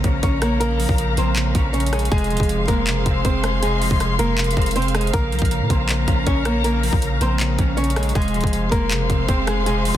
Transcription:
Already playing: C#3 F3 A#3 C4 A#4 C5 F5 A#5
0.04 A#1 C#4, kick, closed hi-hat
0.23 A#1 C#3 C#4 C#5, kick, closed hi-hat
0.42 A#3 A#4 C#5, cross-stick, closed hi-hat
0.60 C#3 A#3 A#4, closed hi-hat
0.80 F3, open hi-hat
0.89 A#1, kick
0.98 C#3, closed hi-hat
1.17 A#1 A#3 C4 C5, closed hi-hat
1.36 C#3, clap, closed hi-hat
1.55 A#1 C#4, kick, closed hi-hat
1.73 C#3 C#4 C#5, closed hi-hat
1.80 closed hi-hat
1.87 closed hi-hat
1.93 G#3 G#4 C#5, cross-stick, closed hi-hat
1.99 closed hi-hat
2.05 closed hi-hat
2.12 F1 C3 G#3 G#4 C5 C6, kick, closed hi-hat
2.18 closed hi-hat
2.24 closed hi-hat
2.30 D#1 F3, closed hi-hat
2.37 F1, kick, closed hi-hat
2.43 closed hi-hat
2.49 C3, closed hi-hat
2.67 F1 G#3 A#3 A#4, kick, closed hi-hat
2.87 F#1 C3, clap, closed hi-hat
3.06 F1 C4, kick, closed hi-hat
3.25 F1 C3 C4 C5, kick, closed hi-hat
3.44 G#3 G#4 C5, cross-stick, closed hi-hat
3.62 C3 G#3 G#4, closed hi-hat
3.82 F3, open hi-hat
3.91 F1, kick
4.00 C3, cross-stick, closed hi-hat
4.19 F1 G#3 A#3 A#4, closed hi-hat
4.38 C3, clap, closed hi-hat
4.44 closed hi-hat
4.51 closed hi-hat
4.57 F1 C4, kick, closed hi-hat
4.62 closed hi-hat
4.66 closed hi-hat
4.71 closed hi-hat
4.76 C3 C4 C5, closed hi-hat
4.82 closed hi-hat
4.88 closed hi-hat
4.95 G#3 G#4 C5, cross-stick, closed hi-hat
5.01 closed hi-hat
5.07 closed hi-hat
5.13 A#1 C#3 A#3 A#4 A#5, kick, closed hi-hat
5.32 C2 F3, closed hi-hat
5.39 A#1, kick, closed hi-hat
5.45 closed hi-hat
5.51 C#3, closed hi-hat
5.61 A#2
5.70 A#1 A#3 C4 C5, kick, closed hi-hat
5.89 C#3, clap, closed hi-hat
6.08 A#1 C#4, kick, closed hi-hat
6.27 A#1 C#3 C#4 C#5, kick, closed hi-hat
6.45 A#3 A#4 C#5, cross-stick, closed hi-hat
6.64 C#3 A#3 A#4, closed hi-hat
6.83 F3, open hi-hat
6.93 A#1, kick
7.02 C#3, closed hi-hat
7.21 A#1 A#3 C4 C5, closed hi-hat
7.40 C#3, clap, closed hi-hat
7.59 A#1 C#4, kick, closed hi-hat
7.77 C#3 C#4 C#5, closed hi-hat
7.84 closed hi-hat
7.90 closed hi-hat
7.96 G#3 G#4 C#5, cross-stick, closed hi-hat
8.03 closed hi-hat
8.09 closed hi-hat
8.15 F1 C3 G#3 G#4 C5 F5 C6, kick, closed hi-hat
8.22 closed hi-hat
8.28 closed hi-hat
8.34 D#1 F3, closed hi-hat
8.41 F1, kick, closed hi-hat
8.47 closed hi-hat
8.53 C3, closed hi-hat
8.71 F1 G#3 A#3 A#4, kick, closed hi-hat
8.91 F#1 C3, clap, closed hi-hat
9.10 F1 C4, kick, closed hi-hat
9.28 F1 C3 C4 C5, kick, closed hi-hat
9.47 G#3 G#4 C5, cross-stick, closed hi-hat
9.66 C3 G#3 G#4, closed hi-hat
9.85 F3, open hi-hat

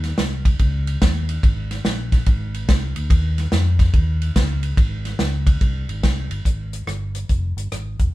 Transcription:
Already playing: D#2
0.04 snare, ride
0.18 C2, snare, ride
0.45 kick, ride
0.59 C#2, kick, ride
0.87 ride
1.02 D#2, kick, snare, ride
1.29 ride
1.43 G#1, kick, ride
1.71 snare, ride
1.84 A#1, snare, ride
2.12 kick, snare, ride
2.26 G#1, kick, ride
2.54 ride
2.69 C2, kick, snare, ride
2.96 D2, ride
3.10 D#2, kick, ride
3.38 snare, ride
3.52 F2, snare, ride
3.79 kick, snare, ride
3.94 D#2, kick, ride
4.22 ride
4.36 C#2, kick, snare, ride
4.63 ride
4.77 G#1, kick, ride
5.05 snare, ride
5.19 C#2, snare, ride
5.47 kick, ride
5.61 C2, kick, ride
5.89 G#1, ride
6.03 C2, kick, snare, ride
6.30 G1, ride
6.45 G#1, kick, closed hi-hat
6.73 cross-stick, closed hi-hat
6.87 G1, cross-stick, closed hi-hat
7.15 cross-stick, closed hi-hat
7.29 F1, kick, closed hi-hat
7.57 G1, closed hi-hat
7.72 G#1, cross-stick, closed hi-hat
7.99 E1, kick, closed hi-hat

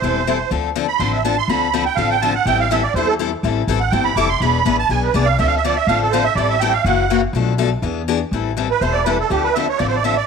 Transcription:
Already playing: C5
0.02 E1 E3 G3 C4 E4 A4
0.27 E3 G3 C4 E4 A4
0.51 D2 D3 F3 C4 D4 A4
0.75 D3 F3 C4 D4 A4
0.88 B5
0.98 A1 D3 F3 C4 D4 A4 C6
1.13 E5
1.24 D3 F3 C4 D4 A4 A5
1.38 C6
1.48 D2 D3 F3 C4 D4 A4 B5
1.73 D3 F3 C4 D4 A4
1.86 G5
1.96 A1 D3 F3 C4 D4 A4 F5
2.10 G5
2.21 D3 F3 C4 D4 A4 A5
2.35 F#5
2.45 A1 E3 G3 C4 E4 A4 G5
2.60 F5
2.71 E3 G3 C4 E4 A4 E5
2.83 D5
2.94 E2 E3 G3 C4 E4 A4 C5
3.07 A4
3.19 E3 G3 C4 E4 A4
3.43 A1 E3 G3 C4 E4 A4
3.67 A1 E3 G3 C4 E4 A4
3.80 F#5
3.90 G1 E3 G3 C4 E4 A4 G5
4.04 B5
4.16 F1 E3 G3 C4 E4 A4 D6
4.29 C6
4.40 E1 E3 B3 D4 G#4 B5
4.65 A1 E3 B3 D4 G#4
4.79 A5
4.89 B1 E3 B3 D4 G#4 G#5
5.04 B4
5.14 C2 E3 B3 D4 G#4 D5
5.26 F5
5.38 D2 D3 F3 C4 D4 A4 E5
5.47 F5
5.57 E5
5.64 D3 F3 C4 D4 A4 D5
5.76 E5
5.87 A1 D3 F3 C4 D4 A4 F5
6.02 A4
6.11 D3 F3 C4 D4 A4 C5
6.24 E5
6.35 A1 E3 G3 C4 E4 A4 D5
6.49 E5
6.60 E3 G3 C4 E4 A4 G5
6.73 F5
6.84 F#1 C#3 E3 A#3 C#4 F#4 F#5
7.10 C#3 E3 A#3 C#4 F#4
7.33 B1 B2 F3 A3 D4 A4
7.58 B2 F3 A3 D4 A4
7.82 E2 E3 B3 D4 G#4
8.08 E3 B3 D4 G#4
8.31 A1 E3 G3 C4 E4 A4
8.57 E3 G3 C4 E4 A4
8.71 B4
8.81 E1 E3 G3 C4 E4 A4 C5
8.93 D5
9.04 E3 G3 C4 E4 A4 B4
9.20 A4
9.30 D2 D3 F3 C4 D4 G4 A4
9.44 B4
9.54 D3 F3 C4 D4 A4 E5
9.69 C#5
9.78 A1 D3 F3 C4 D4 A4 D5
9.88 C5
9.95 D5
10.04 D3 F3 C4 D4 A4 E5
10.17 D5

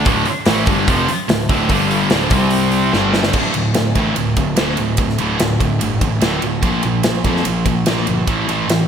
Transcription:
0.05 D1 D2 A2 D3, kick, open hi-hat
0.25 muted distorted electric guitar stroke, muted picked electric bass stroke, open hi-hat
0.46 A1 A2 E3 A3, snare, open hi-hat
0.66 G1 G2 D3 G3, kick, open hi-hat
0.87 F1 F2 C3 F3, kick, open hi-hat
1.08 muted distorted electric guitar stroke, muted picked electric bass stroke, open hi-hat
1.29 D1 D2 A2, snare, open hi-hat
1.49 D1 D2 A2 D3, kick, open hi-hat
1.69 G1 G2 D3 G3, kick, open hi-hat
1.91 open hi-hat
2.10 D1 D2 A2 D3, snare, open hi-hat
2.30 C2 C3 G3 C4, kick, open hi-hat
2.51 open hi-hat
2.72 open hi-hat
2.93 G1 G2 D3 G3, snare
3.14 snare
3.23 snare
3.33 D1 D2 A2 D3, kick, crash
3.54 D1 D2 A2, ride
3.74 D1 D2 A2, snare, ride
3.95 A1 D2 A2 D3, kick, ride
4.15 D1 D2 A2, ride
4.37 D1 D2 A2, kick, ride
4.57 D1 D2 A2 D3, snare, ride
4.77 D1 D2 A2, ride
4.97 D1 D2 A2, kick, ride
5.09 snare
5.18 D1 D2 A2 D3, ride
5.40 D1 D2 A2, snare, ride
5.60 D1 D2 A2, kick, ride
5.81 G1 D2 A2, ride
6.01 A1 D2 A2, kick, ride
6.21 D1 D2 A2 D3, snare, ride
6.42 D1 D2 A2, ride
6.63 A#1 A#2 F3 A#3, kick, ride
6.83 A#1 A#2 F3, ride
7.03 A#1 A#2 F3, snare, ride
7.24 F2 A#2 F3 A#3, kick, ride
7.36 snare
7.45 A#1 A#2 F3, ride
7.65 A#1 A#2 F3, kick, ride
7.86 A#1 A#2 F3 A#3, snare, ride
8.07 G1 A#2 F3, ride
8.27 A1 A2 E3 A3, kick, ride
8.47 A1 A2 E3 A3, ride
8.69 A1 A2 E3, snare, ride

